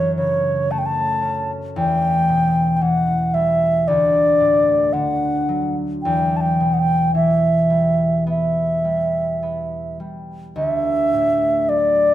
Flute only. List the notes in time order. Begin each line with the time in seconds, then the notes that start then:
Already playing: C#5
0.16 C#5
0.71 A5
0.78 G5
0.86 A5
1.77 G5
2.77 G5
2.82 F#5
3.34 E5
3.88 D5
4.93 F#5
6.03 G5
6.37 A5
6.41 G5
6.74 F#5
6.79 G5
7.16 E5
8.29 E5
10.57 E5
11.69 D5